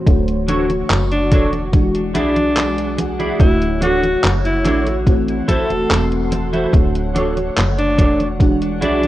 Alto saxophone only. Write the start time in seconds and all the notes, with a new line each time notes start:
1.12 D4
2.15 D4
3.40 E4
3.83 F#4
4.45 E4
5.48 A4
7.78 D4
8.82 D4